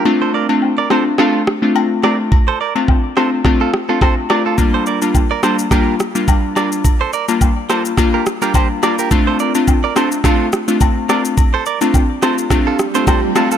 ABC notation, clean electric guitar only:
X:1
M:4/4
L:1/16
Q:"Swing 16ths" 1/4=106
K:Dphr
V:1 name="Clean electric guitar"
z [Ac] [Bd] z2 [Bd] [Ac] z [FA]2 z4 [Bd] z | z [Ac] [Bd] z3 [Ac] z2 [FA] z [FA] [Ac] z [Bd] [FA] | z [Ac] [Bd] z2 [Bd] [Ac] z [GB]2 z4 [Bd] z | z [Ac] [Bd] z3 [Ac] z2 [GB] z [GB] [Gc] z [Bd] [GB] |
z [Ac] [Bd] z2 [Bd] [Ac] z [FA]2 z4 [Bd] z | z [Ac] [Bd] z3 [Ac] z2 [FA] z [Ac] [Ac] z [FA] [FA] |]